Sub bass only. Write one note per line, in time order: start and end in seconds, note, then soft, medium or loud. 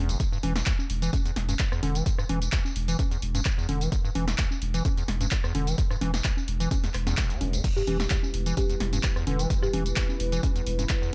0.00 0.16 E1 loud
0.43 0.63 E1 loud
0.90 1.09 E1 loud
1.36 1.56 E1 loud
1.83 2.02 E1 loud
2.29 2.49 E1 loud
2.76 2.95 E1 loud
3.22 3.42 E1 loud
3.69 3.88 E1 loud
4.15 4.35 E1 loud
4.62 4.81 E1 medium
5.08 5.28 E1 loud
5.55 5.74 E1 loud
6.01 6.21 E1 loud
6.48 6.67 E1 medium
6.94 7.14 E1 loud
7.41 7.60 E1 loud
7.87 8.07 E1 loud
8.34 8.54 E1 medium
8.80 9.00 E1 loud
9.27 9.47 E1 loud
9.73 9.93 E1 loud
10.20 10.40 E1 loud
10.67 10.86 E1 loud